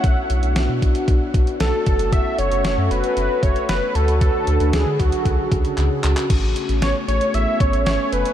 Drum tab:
CC |----------------|----------------|----------------|x---------------|
HH |x-xxx-xxx-xxx-xx|x-xxx-xxx-xxx-xx|x-xxx-xxx-xxx-xx|x-xxx-xxx-xxx-xx|
CP |----------------|----------------|------------x-xx|----------------|
SD |----o-------o---|----o-------o---|----o-----------|----o-------o---|
BD |o-----o-o-o---o-|o---------o-----|o-----o-o-o-----|o---------o-----|